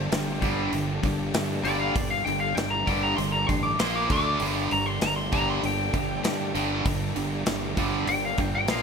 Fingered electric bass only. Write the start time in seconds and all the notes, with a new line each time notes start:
0.12 G1
0.42 G1
0.73 G1
1.03 G1
1.34 G2
1.64 G1
1.96 G1
2.27 G1
2.57 G1
2.87 G1
3.18 G1
3.49 A1
3.80 A#1
4.10 D2
4.41 G1
4.72 G1
5.02 G1
5.33 G1
5.63 G1
5.94 G1
6.25 G2
6.55 G1
6.85 G1
7.17 G1
7.47 G1
7.77 G1
8.07 G1
8.38 G1
8.69 A#1